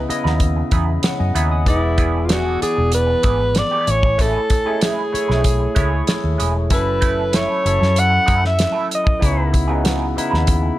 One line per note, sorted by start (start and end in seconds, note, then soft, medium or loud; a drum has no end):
0.00 0.09 C#3 medium
0.00 0.10 B3 medium
0.00 0.10 E4 medium
0.00 0.10 D#5 medium
0.09 0.59 C#3 medium
0.09 0.59 B3 medium
0.09 0.59 E4 medium
0.09 0.59 D#5 medium
0.09 muted clean electric guitar stroke soft
0.09 muted fingered electric bass stroke soft
0.09 closed hi-hat medium
0.24 0.62 D#2 medium
0.24 0.39 E3 soft
0.24 0.39 B3 soft
0.24 0.39 D#4 medium
0.24 0.39 B4 medium
0.24 snare soft
0.40 muted clean electric guitar stroke soft
0.40 kick medium
0.40 closed hi-hat medium
0.57 muted clean electric guitar stroke soft
0.71 0.97 E2 medium
0.71 0.91 E3 medium
0.71 0.87 B3 medium
0.71 0.87 D#4 medium
0.71 0.86 G#4 medium
0.71 1.02 B5 medium
0.71 kick medium
0.71 closed hi-hat medium
0.87 muted clean electric guitar stroke soft
1.03 1.19 C#5 soft
1.03 1.33 F#5 medium
1.03 muted clean electric guitar stroke soft
1.03 snare medium
1.03 closed hi-hat medium
1.19 1.32 F#2 medium
1.19 1.35 D#5 soft
1.19 1.34 G#5 medium
1.35 1.68 D#2 medium
1.35 1.50 E3 soft
1.35 1.50 B3 soft
1.35 1.49 D#4 medium
1.35 1.49 G#4 soft
1.35 1.65 E5 medium
1.35 1.51 F#5 medium
1.35 1.50 B5 medium
1.35 closed hi-hat medium
1.50 1.81 G#5 soft
1.50 1.81 D#6 medium
1.50 muted clean electric guitar stroke soft
1.66 2.57 E1 medium
1.66 2.41 E3 medium
1.66 2.41 B3 medium
1.66 2.27 E4 medium
1.66 2.42 G#4 medium
1.66 2.42 D5 loud
1.66 kick medium
1.66 closed hi-hat medium
1.98 2.17 E3 medium
1.98 2.17 B3 medium
1.98 2.17 D4 medium
1.98 2.17 G#4 medium
1.98 kick medium
1.98 closed hi-hat medium
2.26 2.58 E3 medium
2.26 2.59 B3 medium
2.26 2.59 D4 medium
2.26 2.33 F4 medium
2.26 closed hi-hat medium
2.30 2.62 F#4 medium
2.30 2.59 G#4 medium
2.30 snare medium
2.60 3.60 E3 medium
2.60 3.61 B3 medium
2.60 3.61 G#4 medium
2.60 2.91 G#4 medium
2.60 3.61 D5 medium
2.60 muted clean electric guitar stroke soft
2.60 muted fingered electric bass stroke soft
2.60 closed hi-hat medium
2.75 3.14 E1 medium
2.75 muted clean electric guitar stroke soft
2.92 3.60 B4 medium
2.92 closed hi-hat medium
3.07 muted clean electric guitar stroke soft
3.23 3.61 G#1 medium
3.23 3.43 E3 medium
3.23 3.40 B3 medium
3.23 3.40 D4 medium
3.23 3.39 G#4 medium
3.23 kick medium
3.23 closed hi-hat medium
3.40 muted clean electric guitar stroke soft
3.55 3.92 D5 medium
3.55 muted clean electric guitar stroke soft
3.55 snare medium
3.55 closed hi-hat medium
3.71 3.86 E3 medium
3.71 3.87 B3 medium
3.71 3.87 D4 medium
3.71 3.87 G#4 medium
3.87 4.36 A1 medium
3.87 4.50 A3 medium
3.87 4.50 E4 medium
3.87 4.51 C#5 medium
3.87 4.23 C#5 medium
3.87 4.50 G#5 medium
3.87 muted clean electric guitar stroke soft
3.87 closed hi-hat medium
4.03 muted clean electric guitar stroke soft
4.03 kick medium
4.18 4.37 G#3 medium
4.18 4.37 C#4 medium
4.18 4.38 E4 medium
4.18 4.38 G#4 medium
4.18 4.83 A4 medium
4.18 kick medium
4.18 closed hi-hat medium
4.50 muted clean electric guitar stroke soft
4.50 kick medium
4.50 closed hi-hat medium
4.65 4.80 G#3 soft
4.65 5.03 A3 medium
4.65 4.80 C#4 soft
4.65 5.03 E4 medium
4.65 4.81 E4 soft
4.65 4.81 G#4 medium
4.65 5.03 G#4 soft
4.65 5.03 C#5 medium
4.81 5.00 G#3 medium
4.81 5.00 C#4 medium
4.81 5.01 E4 medium
4.81 5.01 G#4 medium
4.81 6.05 G#4 medium
4.81 snare loud
4.81 closed hi-hat medium
5.12 5.62 A3 medium
5.12 5.63 E4 medium
5.12 5.63 G#4 medium
5.12 5.63 C#5 medium
5.12 muted clean electric guitar stroke soft
5.12 muted fingered electric bass stroke soft
5.12 closed hi-hat medium
5.28 5.66 B1 medium
5.28 5.43 G#3 soft
5.28 5.43 C#4 soft
5.28 5.43 E4 soft
5.28 5.43 B4 soft
5.28 snare soft
5.44 muted clean electric guitar stroke soft
5.44 kick medium
5.44 closed hi-hat medium
5.59 muted clean electric guitar stroke soft
5.75 6.01 C#2 medium
5.75 5.94 G#3 medium
5.75 6.51 A3 medium
5.75 5.91 C#4 medium
5.75 6.51 E4 medium
5.75 5.91 E4 medium
5.75 5.90 G#4 medium
5.75 6.51 G#4 medium
5.75 6.51 C#5 medium
5.75 kick medium
5.75 closed hi-hat medium
5.91 muted clean electric guitar stroke soft
6.07 muted clean electric guitar stroke soft
6.07 snare medium
6.07 closed hi-hat medium
6.24 6.36 D#2 medium
6.38 6.71 E1 medium
6.38 6.53 G#3 soft
6.38 6.54 C#4 soft
6.38 6.54 E4 medium
6.38 6.53 G#4 medium
6.38 closed hi-hat medium
6.54 muted clean electric guitar stroke soft
6.70 7.46 F#1 medium
6.70 7.45 F#3 medium
6.70 7.45 C#4 medium
6.70 7.46 E4 medium
6.70 7.46 A4 medium
6.70 7.37 B4 medium
6.70 kick medium
6.70 closed hi-hat medium
7.01 7.20 A3 medium
7.01 7.21 C#4 medium
7.01 7.21 E4 medium
7.01 7.21 A4 medium
7.01 kick medium
7.01 closed hi-hat medium
7.33 7.62 A3 medium
7.33 7.62 C#4 medium
7.33 7.63 E4 medium
7.33 7.63 A4 medium
7.33 8.01 C#5 medium
7.33 snare medium
7.33 closed hi-hat medium
7.64 7.77 F#1 medium
7.64 8.64 F#3 medium
7.64 8.65 C#4 medium
7.64 8.65 E4 medium
7.64 8.65 A4 medium
7.64 muted clean electric guitar stroke soft
7.64 closed hi-hat medium
7.79 8.18 F#2 medium
7.79 muted clean electric guitar stroke soft
7.79 snare soft
7.96 8.45 F#5 medium
7.96 closed hi-hat medium
8.10 muted clean electric guitar stroke soft
8.26 8.65 F#2 medium
8.26 8.47 A3 medium
8.26 8.42 C#4 medium
8.26 8.41 E4 medium
8.26 8.40 A4 medium
8.26 kick medium
8.26 closed hi-hat medium
8.41 muted clean electric guitar stroke soft
8.41 snare soft
8.47 8.89 E5 medium
8.58 muted clean electric guitar stroke soft
8.58 snare medium
8.58 closed hi-hat medium
8.72 8.87 A3 medium
8.72 8.88 C#4 soft
8.72 8.88 E4 medium
8.72 8.88 A4 medium
8.89 muted clean electric guitar stroke soft
8.89 closed hi-hat medium
8.95 9.52 D#5 medium
9.04 muted clean electric guitar stroke soft
9.04 kick loud
9.19 10.13 C#2 medium
9.19 9.60 C#3 medium
9.19 9.40 E3 medium
9.19 9.40 B3 medium
9.19 9.60 B3 medium
9.19 9.40 D#4 medium
9.19 9.60 D#4 medium
9.19 9.60 E4 medium
9.19 9.41 G#4 medium
9.19 kick medium
9.19 closed hi-hat medium
9.52 muted clean electric guitar stroke soft
9.52 kick medium
9.52 closed hi-hat medium
9.68 10.07 C#3 medium
9.68 9.83 E3 soft
9.68 9.83 B3 soft
9.68 10.07 B3 medium
9.68 9.84 D#4 soft
9.68 10.07 D#4 medium
9.68 10.07 F#4 medium
9.68 9.83 G#4 medium
9.84 10.03 E3 medium
9.84 10.04 B3 medium
9.84 10.04 D#4 medium
9.84 10.04 G#4 medium
9.84 snare medium
9.84 closed hi-hat medium
10.16 10.66 C#3 medium
10.16 10.67 B3 medium
10.16 10.67 D#4 medium
10.16 10.67 E4 medium
10.16 muted clean electric guitar stroke soft
10.16 muted fingered electric bass stroke soft
10.16 closed hi-hat medium
10.31 10.69 D#2 medium
10.31 10.46 E3 soft
10.31 10.46 B3 soft
10.31 10.46 D#4 medium
10.31 10.46 B4 medium
10.31 snare soft
10.47 muted clean electric guitar stroke soft
10.47 kick medium
10.47 closed hi-hat medium
10.63 muted clean electric guitar stroke soft